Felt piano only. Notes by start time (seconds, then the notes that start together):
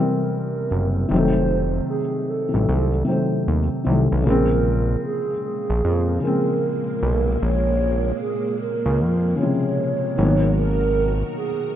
Already playing: C3 E3 G3
0.00 C4
1.09 C3 D#3
1.14 F#3 A3
2.49 C3 D#3
2.54 F#3 A3
3.05 C3 D#3
3.09 F#3 A3
3.85 C3 D#3
3.89 F#3 A3
4.23 C#3 F3
4.28 G#3 C4
6.20 C#3 F3
6.25 G#3 C4
9.36 C#3 F3
9.41 C3 G#3
10.18 D#3 F#3
10.22 A#3 B3